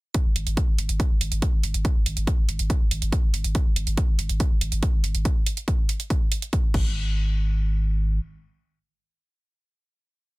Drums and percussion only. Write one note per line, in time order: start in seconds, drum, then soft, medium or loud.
0.14 kick loud
0.14 closed hi-hat medium
0.36 open hi-hat loud
0.47 closed hi-hat medium
0.57 kick loud
0.57 closed hi-hat medium
0.78 open hi-hat medium
0.89 closed hi-hat medium
1.00 kick loud
1.00 closed hi-hat medium
1.21 open hi-hat loud
1.32 closed hi-hat medium
1.42 kick loud
1.42 closed hi-hat medium
1.63 open hi-hat medium
1.74 closed hi-hat medium
1.85 kick loud
1.85 closed hi-hat medium
2.06 open hi-hat loud
2.17 closed hi-hat medium
2.27 kick loud
2.27 closed hi-hat medium
2.49 open hi-hat loud
2.59 closed hi-hat medium
2.70 kick loud
2.70 closed hi-hat medium
2.91 open hi-hat loud
3.02 closed hi-hat medium
3.12 kick loud
3.12 closed hi-hat medium
3.34 open hi-hat medium
3.44 closed hi-hat medium
3.55 kick loud
3.55 closed hi-hat medium
3.76 open hi-hat loud
3.87 closed hi-hat medium
3.97 kick loud
3.97 closed hi-hat medium
4.19 open hi-hat loud
4.29 closed hi-hat medium
4.40 kick loud
4.40 closed hi-hat medium
4.61 open hi-hat loud
4.72 closed hi-hat medium
4.83 kick loud
4.83 closed hi-hat medium
5.04 open hi-hat medium
5.15 closed hi-hat medium
5.25 kick loud
5.25 closed hi-hat medium
5.46 open hi-hat loud
5.57 closed hi-hat medium
5.68 kick loud
5.68 closed hi-hat medium
5.89 open hi-hat loud
6.00 closed hi-hat medium
6.10 kick loud
6.10 closed hi-hat medium
6.32 open hi-hat loud
6.42 closed hi-hat medium
6.53 kick loud
6.53 closed hi-hat medium
6.74 kick loud
6.74 crash medium